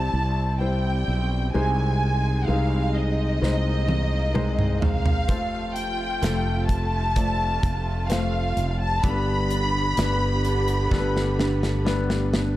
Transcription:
0.00 0.60 G3 medium
0.00 1.50 G3 medium
0.00 0.60 C4 medium
0.00 5.25 C4 medium
0.00 0.13 E4 soft
0.00 0.61 E4 medium
0.00 1.50 E4 medium
0.00 1.54 G4 medium
0.00 0.61 C5 medium
0.00 0.56 A5 medium
0.14 1.03 C2 medium
0.14 1.06 E4 soft
0.60 1.49 G3 medium
0.60 1.50 C4 medium
0.60 2.01 C4 soft
0.60 1.50 E4 soft
0.60 1.50 C5 medium
0.60 1.50 G5 medium
1.08 1.51 B1 medium
1.08 1.64 E4 medium
1.53 2.44 C2 medium
1.53 5.29 C3 medium
1.53 2.91 C3 medium
1.53 3.39 G#3 medium
1.53 2.43 G#3 medium
1.53 2.44 C4 medium
1.53 5.25 D#4 medium
1.53 2.44 D#4 medium
1.53 2.47 G#4 medium
1.53 2.44 C5 medium
1.53 2.48 G#5 medium
2.01 2.94 C4 soft
2.47 3.38 C2 medium
2.47 3.37 G#3 medium
2.47 3.37 C4 medium
2.47 3.37 D#4 medium
2.47 5.29 G#4 medium
2.47 3.38 C5 medium
2.47 2.94 F5 medium
2.94 3.88 C4 medium
2.94 4.82 D#5 medium
3.41 5.29 C2 medium
3.41 4.34 G#3 medium
3.41 4.31 G#3 medium
3.41 5.27 A#3 medium
3.41 4.31 C4 medium
3.41 4.31 D#4 medium
3.41 4.31 C5 medium
3.41 snare soft
3.88 4.82 C4 medium
3.88 high tom medium
4.34 5.24 G#3 medium
4.34 5.38 G#3 soft
4.34 5.24 C4 medium
4.34 5.24 D#4 medium
4.34 5.25 C5 medium
4.34 mid tom medium
4.59 mid tom medium
4.81 5.76 C4 medium
4.81 5.75 F5 medium
4.81 floor tom medium
5.06 floor tom medium
5.27 6.19 F1 medium
5.27 9.03 F2 medium
5.27 8.99 C3 medium
5.27 9.00 A3 medium
5.27 6.18 A3 medium
5.27 6.18 C4 medium
5.27 7.14 F4 medium
5.27 6.18 F4 medium
5.27 6.21 A4 medium
5.27 6.18 C5 medium
5.27 kick medium
5.27 closed hi-hat medium
5.74 6.68 C4 medium
5.74 6.65 G5 medium
5.74 closed hi-hat medium
6.22 7.60 F1 medium
6.22 7.12 A3 medium
6.22 7.12 C4 medium
6.22 7.12 F4 medium
6.22 9.04 A4 medium
6.22 7.12 C5 medium
6.22 snare medium
6.22 closed hi-hat medium
6.67 7.62 C4 medium
6.67 8.05 A5 medium
6.67 kick medium
6.67 closed hi-hat medium
7.16 8.05 A3 medium
7.16 8.09 A3 medium
7.16 8.05 C4 medium
7.16 8.06 F4 medium
7.16 9.03 F4 medium
7.16 8.06 D5 medium
7.16 kick medium
7.16 closed hi-hat medium
7.63 8.53 F1 medium
7.63 8.56 C4 medium
7.63 kick medium
7.63 closed hi-hat medium
8.08 8.99 A3 medium
8.08 9.13 A3 medium
8.08 8.99 C4 medium
8.08 8.99 F4 medium
8.08 8.99 C5 medium
8.08 8.80 F5 medium
8.08 snare medium
8.08 closed hi-hat medium
8.57 9.01 F1 medium
8.57 9.14 C4 medium
8.57 closed hi-hat medium
8.80 9.02 A5 medium
9.03 9.94 G1 medium
9.03 10.41 G2 medium
9.03 12.57 G2 medium
9.03 12.57 D3 medium
9.03 9.93 G3 medium
9.03 12.57 B3 medium
9.03 9.93 B3 medium
9.03 9.93 D4 medium
9.03 12.57 G4 medium
9.03 9.98 G4 medium
9.03 9.11 A4 medium
9.03 11.85 B5 loud
9.03 kick medium
9.03 closed hi-hat medium
9.11 9.97 B4 medium
9.50 10.44 D4 medium
9.50 closed hi-hat medium
9.97 10.88 G1 medium
9.97 10.87 G3 medium
9.97 10.87 B3 medium
9.97 10.87 D4 medium
9.97 12.57 G4 medium
9.97 10.87 B4 medium
9.97 snare medium
9.97 closed hi-hat medium
10.45 11.38 D4 medium
10.45 closed hi-hat medium
10.68 closed hi-hat soft
10.91 12.57 G1 medium
10.91 11.80 G3 medium
10.91 11.80 B3 medium
10.91 11.85 B3 medium
10.91 11.81 D4 medium
10.91 10.98 A4 medium
10.91 kick medium
10.91 snare medium
10.98 11.84 B4 medium
11.16 snare soft
11.39 12.32 D4 medium
11.39 snare medium
11.63 snare medium
11.85 12.57 G3 medium
11.85 12.57 B3 medium
11.85 12.57 D4 medium
11.85 12.57 B4 medium
11.85 snare medium
12.10 snare medium
12.33 12.57 D4 medium
12.33 snare medium

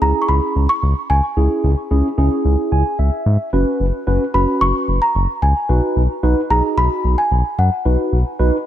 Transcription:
0.02 0.13 C#2 loud
0.02 0.66 C#4 medium
0.02 0.66 E4 medium
0.02 0.66 G#4 medium
0.02 0.22 A#5 medium
0.22 0.29 C#6 medium
0.28 0.40 C#2 loud
0.28 0.66 B5 loud
0.56 0.67 C#2 medium
0.69 1.11 C#6 loud
0.83 0.94 C#2 loud
1.10 1.21 C#2 medium
1.10 2.14 G#5 medium
1.37 1.48 C#2 loud
1.37 1.69 C#4 medium
1.37 1.69 E4 medium
1.37 1.69 G#4 medium
1.64 1.75 C#2 loud
1.91 2.02 C#2 medium
1.91 2.07 C#4 medium
1.91 2.07 E4 medium
1.91 2.07 G#4 medium
2.18 2.29 C#2 loud
2.18 2.82 C#4 medium
2.18 2.82 E4 medium
2.18 2.82 G#4 medium
2.45 2.56 C#2 loud
2.72 2.84 C#2 medium
2.72 2.97 G#5 medium
2.99 3.11 C#2 medium
2.99 3.49 E5 medium
3.26 3.38 G#2 loud
3.53 3.65 F#1 loud
3.53 3.85 C#4 medium
3.53 3.85 F#4 medium
3.53 3.85 B4 medium
3.80 3.92 F#1 loud
4.07 4.19 F#1 medium
4.07 4.23 C#4 medium
4.07 4.23 F#4 medium
4.07 4.23 B4 medium
4.34 4.46 F#1 loud
4.34 4.98 C#4 medium
4.34 4.98 F#4 medium
4.34 4.98 B4 medium
4.34 4.62 B5 medium
4.61 4.73 F#1 loud
4.61 5.03 C#6 loud
4.88 5.00 F#1 loud
5.02 5.44 A#5 medium
5.15 5.27 F#1 loud
5.42 5.54 C#2 loud
5.42 5.67 G#5 medium
5.69 5.81 B1 loud
5.69 6.01 D#4 medium
5.69 6.01 F#4 medium
5.69 6.01 B4 medium
5.96 6.08 B1 loud
6.23 6.35 B1 loud
6.23 6.39 D#4 medium
6.23 6.39 F#4 medium
6.23 6.39 B4 loud
6.50 6.62 B1 loud
6.50 7.14 D#4 medium
6.50 7.14 F#4 medium
6.50 7.14 G#4 medium
6.50 6.76 A#5 loud
6.77 6.89 B1 loud
6.77 7.19 B5 loud
7.04 7.16 B1 loud
7.18 7.60 G#5 medium
7.31 7.43 B1 medium
7.59 7.70 F#2 medium
7.59 7.84 F#5 medium
7.85 7.97 B1 loud
7.85 8.17 D#4 medium
7.85 8.17 F#4 medium
7.85 8.18 B4 medium
8.13 8.24 B1 loud
8.40 8.51 B1 loud
8.40 8.56 D#4 medium
8.40 8.56 F#4 medium
8.40 8.56 B4 loud

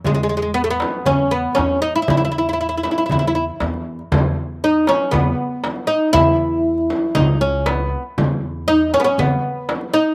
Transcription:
0.05 0.82 E2 medium
0.05 0.13 G#3 medium
0.05 darbuka dum medium
0.05 frame drum medium
0.14 0.21 G#3 medium
0.23 0.28 G#3 medium
0.29 0.36 G#3 medium
0.37 0.41 G#3 medium
0.42 0.50 G#3 soft
0.54 0.63 B3 medium
0.64 0.70 A3 medium
0.70 1.08 B3 medium
0.80 darbuka tek medium
0.80 frame drum medium
1.06 1.45 E2 medium
1.06 1.30 C#4 medium
1.06 darbuka dum medium
1.06 frame drum medium
1.31 1.58 B3 medium
1.55 1.97 E2 medium
1.55 1.81 C#4 medium
1.55 darbuka tek medium
1.55 frame drum medium
1.82 1.95 D#4 medium
1.96 2.01 E4 medium
1.96 darbuka ka soft
2.02 2.09 E4 medium
2.08 2.86 E2 medium
2.08 2.16 E4 medium
2.08 frame drum medium
2.08 darbuka dum medium
2.17 2.23 E4 medium
2.17 darbuka ka soft
2.25 2.30 E4 medium
2.32 2.37 E4 soft
2.38 2.47 E4 medium
2.47 2.52 E4 soft
2.47 darbuka ka soft
2.53 2.59 E4 medium
2.61 2.68 E4 soft
2.69 2.76 E4 medium
2.69 darbuka ka soft
2.77 2.82 E4 soft
2.83 2.90 E4 medium
2.83 frame drum medium
2.91 2.97 E4 soft
2.98 3.05 E4 medium
3.06 3.11 E4 soft
3.06 darbuka dum medium
3.10 3.49 E2 medium
3.10 3.18 E4 medium
3.10 frame drum medium
3.19 3.26 E4 medium
3.19 darbuka ka soft
3.27 3.34 E4 medium
3.35 3.44 E4 medium
3.35 darbuka ka soft
3.60 3.99 E2 medium
3.60 darbuka tek medium
3.60 frame drum medium
3.74 darbuka ka soft
3.99 darbuka ka soft
4.12 4.89 E2 medium
4.12 frame drum medium
4.12 darbuka dum medium
4.64 4.87 D#4 medium
4.75 darbuka ka soft
4.87 5.14 C#4 medium
4.87 darbuka tek medium
4.87 frame drum medium
5.11 5.33 E2 medium
5.11 5.91 B3 medium
5.11 darbuka dum medium
5.11 frame drum medium
5.64 darbuka tek medium
5.64 frame drum medium
5.76 darbuka ka soft
5.87 6.13 D#4 medium
6.13 6.91 E2 medium
6.13 7.15 E4 loud
6.13 darbuka dum medium
6.13 frame drum medium
6.78 darbuka ka soft
6.90 frame drum medium
7.15 7.93 C#2 medium
7.15 7.41 D#4 medium
7.15 frame drum medium
7.15 darbuka dum medium
7.41 7.67 C#4 medium
7.66 8.02 B3 medium
7.66 darbuka tek medium
7.66 frame drum medium
7.80 darbuka ka soft
8.18 8.95 E2 medium
8.18 frame drum medium
8.18 darbuka dum medium
8.68 8.93 D#4 medium
8.81 darbuka ka soft
8.94 9.00 C#4 medium
8.94 frame drum medium
9.00 9.06 B3 medium
9.04 9.18 C#4 medium
9.18 9.38 E2 medium
9.18 9.97 B3 medium
9.18 darbuka dum medium
9.18 frame drum medium
9.69 darbuka tek medium
9.69 frame drum medium
9.81 darbuka ka soft
9.94 10.15 D#4 medium

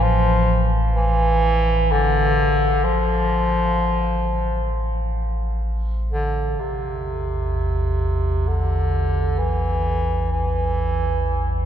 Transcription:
0.00 6.59 A1 medium
0.00 0.69 F3 loud
0.00 6.59 F5 medium
0.95 1.93 E3 loud
1.91 2.86 D3 medium
2.84 4.72 F3 medium
6.12 6.61 D3 medium
6.60 11.65 A1 medium
6.60 11.65 E2 medium
6.60 8.49 C3 medium
8.48 9.40 D3 medium
9.38 10.31 E3 medium
10.32 11.65 E3 medium

